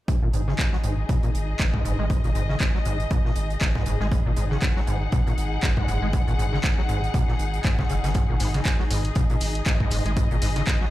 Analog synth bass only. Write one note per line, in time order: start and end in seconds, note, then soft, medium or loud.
0.22 0.31 G#1 loud
0.34 0.54 G#1 medium
0.84 1.04 G#1 medium
1.34 1.55 G#1 medium
1.85 1.96 F#1 medium
1.99 2.18 G#1 medium
2.24 2.33 G#1 loud
2.35 2.56 G#1 medium
2.86 3.06 G#1 medium
3.36 3.56 G#1 medium
3.86 3.97 F#1 loud
4.01 4.20 G#1 medium
4.26 4.34 G#1 medium
4.37 4.57 G#1 loud
4.87 5.08 G#1 medium
5.38 5.58 G#1 medium
5.88 5.99 F#1 loud
6.02 6.21 G#1 loud
6.28 6.36 G#1 loud
6.39 6.59 G#1 loud
6.89 7.09 G#1 medium
7.39 7.60 G#1 loud
7.90 8.01 F#1 medium
8.04 8.23 G#1 medium
8.29 8.38 G#1 loud
8.40 8.61 G#1 loud
8.91 9.11 G#1 medium
9.41 9.61 G#1 medium
9.92 10.03 F#1 medium
10.06 10.25 G#1 medium
10.31 10.39 G#1 loud
10.42 10.62 G#1 loud